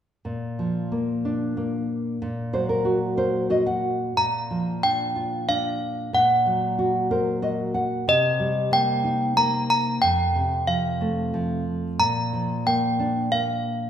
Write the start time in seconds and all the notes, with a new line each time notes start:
0.25 A#2
0.59 F3
0.92 A#3
1.25 D4
1.57 A#3
2.22 A#2
2.53 F#3 C5
2.69 A#4
2.85 F#4
3.17 A#4 C5
3.50 F#4 D#5
3.67 F#5
4.17 A#2 A#5
4.51 F3
4.83 D4 G5
5.16 F4
5.49 D4 F5
6.13 A#2 F#5
6.46 F#3
6.79 F#4
7.11 A#4 C5
7.42 F#4 D#5
7.74 F#5
8.08 C3 D#5
8.40 G3
8.71 A#3 G5
9.04 D#4
9.37 A#3 A#5
9.70 A#5
10.02 F2 G5
10.35 C3
10.67 F3 F5
11.01 A3
11.34 F3
11.99 A#2 A#5
12.33 F3
12.66 A#3 G5
12.99 D4
13.32 A#3 F5